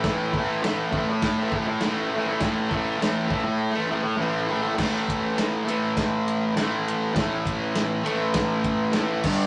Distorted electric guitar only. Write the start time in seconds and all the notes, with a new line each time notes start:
0.05 A2 E3
0.10 A3
0.33 A2 E3
0.38 A3
0.62 A2 E3
0.67 A3
0.92 A2 E3
0.97 A3
1.10 muted distorted electric guitar stroke
1.38 A3
1.43 E3
1.51 A2 E3
1.56 A3
1.67 muted distorted electric guitar stroke
1.82 A2 E3
1.88 A3
2.11 A2 E3
2.17 A3
2.26 A3
2.32 E3
2.41 A2 E3
2.46 A3
2.70 A2 E3
2.76 A3
2.98 A2 E3
3.03 A3
3.28 A2 E3
3.33 A3
3.44 muted distorted electric guitar stroke
3.71 A3
3.76 E3
3.87 A2 E3
3.92 A3
4.03 muted distorted electric guitar stroke
4.17 A2 E3
4.22 A3
4.47 A2 E3
4.53 A3
4.62 A3
4.67 E3
4.75 A2 E3
4.81 A3
5.65 E3 A3
5.70 A2
6.56 A2 E3
6.61 A3
7.14 A2 E3
7.19 A3
8.04 E3 A3
8.09 A2
8.92 A2
8.96 E3 A3
9.23 G2 D3
9.29 G3